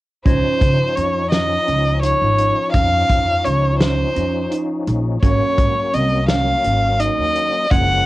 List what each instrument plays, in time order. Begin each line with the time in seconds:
0.26 upright bass C#2, tonewheel organ F3 C#4 D#4, tine electric piano C#4, violin C5, kick, closed hi-hat
0.61 upright bass C#3, kick, closed hi-hat
0.96 upright bass F2, tine electric piano C#4, violin C#5, closed hi-hat
1.31 tine electric piano C#4, violin D#5, snare, closed hi-hat
1.67 upright bass C#2, tine electric piano C#4, closed hi-hat
2.02 tine electric piano D#4, violin C#5, closed hi-hat
2.22 upright bass G#1
2.38 closed hi-hat
2.73 upright bass F2, tine electric piano C#4, violin F5, kick, closed hi-hat
3.09 upright bass F2, kick, closed hi-hat
3.44 upright bass C#2, tine electric piano C#4, violin C#5, closed hi-hat
3.80 tine electric piano C#4, violin C5, snare, closed hi-hat
4.16 upright bass F2, tine electric piano C#4, closed hi-hat
4.51 tine electric piano D#4, closed hi-hat
4.87 upright bass A#1, closed hi-hat
5.23 upright bass G#1, tonewheel organ F#3 A#3 C#4, tine electric piano C#4, violin C#5, kick, closed hi-hat
5.58 upright bass G#2, kick, closed hi-hat
5.93 upright bass C2, tine electric piano C4, violin D#5, closed hi-hat
6.29 tine electric piano C#4, violin F5, snare, closed hi-hat
6.64 upright bass G#1, tine electric piano C#4, closed hi-hat
7.00 tine electric piano D#4, violin D#5, closed hi-hat
7.18 upright bass D#2
7.36 closed hi-hat
7.71 upright bass F#1, tonewheel organ F3 G#3 A#3 C#4, tine electric piano C#4, violin F#5, kick, closed hi-hat